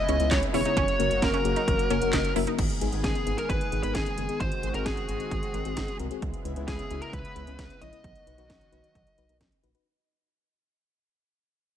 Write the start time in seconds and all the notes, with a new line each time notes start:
Already playing: C#3 G#3 B3 E4 D#5
0.09 C#2 B3 C#4 E4 G#4, closed hi-hat
0.20 C#2 B3 C#4 E4 G#4, closed hi-hat
0.31 C#2 D#4 C#5, kick, snare, clap, closed hi-hat
0.43 closed hi-hat
0.54 E1 B3 C#4 E4 G#4 C#5, open hi-hat
0.65 B3 C#4 D#4 E4 G#4, closed hi-hat
0.77 F#1 F#3 A#3 C#4 F#4 C#5, kick, closed hi-hat
0.88 closed hi-hat
1.00 F#1 A#3 C#4 F#4 A#4, closed hi-hat
1.11 F#1, closed hi-hat
1.22 F#1 A#3 A#4, kick, snare, closed hi-hat
1.34 C#4, closed hi-hat
1.45 F#1 A#3 C#4 F#4 G#4, closed hi-hat
1.56 D#4, closed hi-hat
1.68 F#1, kick, closed hi-hat
1.79 closed hi-hat
1.90 F#1 A#3 C#4 F#4 A#4, closed hi-hat
2.02 F#1 A#3 C#4 F#4 A#4, closed hi-hat
2.13 F#1 D#4, kick, snare, clap, closed hi-hat
2.25 closed hi-hat
2.36 F#1 A#3 C#4 E4 F#4 A#4, open hi-hat
2.47 A#3 C#4 D#4 F#4 A#4, closed hi-hat
2.59 G#1 D#3 G#3 B3 G#4, kick, closed hi-hat, crash
2.70 closed hi-hat
2.81 G#1 B3 D#4 G#4, closed hi-hat
2.92 G#1 B3 D#4 G#4, closed hi-hat
3.04 G#1 G#4, kick, snare, closed hi-hat
3.15 closed hi-hat
3.27 G#1 B3 D#4 G#4, closed hi-hat
3.38 A#4, closed hi-hat
3.50 G#1 B4, kick, closed hi-hat
3.61 closed hi-hat
3.72 G#1 B3 D#4 G#4, closed hi-hat
3.83 G#1 B3 D#4 B4, closed hi-hat
3.95 G#1 G#4, kick, snare, closed hi-hat
4.06 closed hi-hat
4.18 F#1 B3 D#4 G#4, closed hi-hat
4.29 B3 D#4 G#4, closed hi-hat
4.40 G#1 C4 F#4 C5, kick, closed hi-hat
4.52 closed hi-hat
4.63 G#1 C4 F#4 G#4, closed hi-hat
4.74 G#1 C4 F#4 G#4 A#4, closed hi-hat
4.86 G#1 G#4, kick, snare, closed hi-hat
4.97 closed hi-hat
5.09 G#1 C4 F#4 G#4, closed hi-hat
5.20 closed hi-hat
5.31 G#1, kick, closed hi-hat
5.43 closed hi-hat
5.54 G#1 C4 F#4 A#4, closed hi-hat
5.65 G#1 C4 F#4 G#4, closed hi-hat
5.77 G#1, kick, snare, closed hi-hat
5.88 closed hi-hat
5.99 C2 C4 F#4 A#4, closed hi-hat
6.11 C4 F#4 G#4, closed hi-hat
6.22 C#2 C#3 B3 E4, kick, closed hi-hat
6.34 closed hi-hat
6.45 C#2 C#4 E4 B4, closed hi-hat
6.56 C#2 C#4 E4 B4, closed hi-hat
6.68 C#2 G#4, kick, snare, closed hi-hat
6.79 closed hi-hat
6.91 C#2 C#4 E4 F#4, closed hi-hat
7.02 A#4, closed hi-hat
7.13 C#2 B4, kick, closed hi-hat
7.25 closed hi-hat
7.36 C#2 C#4 E4 B4, closed hi-hat
7.47 C#2 C#4 E4 B4, closed hi-hat
7.59 C#2, kick, snare, closed hi-hat
7.70 closed hi-hat
7.81 A#1 C#4 E4 C#5 D#5, closed hi-hat
7.93 C#4 E4 B4, closed hi-hat
8.04 B1 D#3 F#3 F#4, kick, closed hi-hat
8.16 closed hi-hat
8.27 B1 D#4 F#4 B4, closed hi-hat
8.38 B1 D#4 F#4 B4, closed hi-hat
8.50 B1, kick, snare, closed hi-hat
8.61 closed hi-hat
8.72 B1 D#4 F#4 B4, closed hi-hat
8.84 closed hi-hat
8.95 B1, kick, closed hi-hat
9.07 closed hi-hat
9.18 B1 D#4 F#4 B4, closed hi-hat
9.29 B1 D#4 F#4 A#4, closed hi-hat
9.41 B1, kick, snare, closed hi-hat
9.52 closed hi-hat
9.63 A#1 D#4 F#4 B4, closed hi-hat
9.75 D#4 F#4 B4, closed hi-hat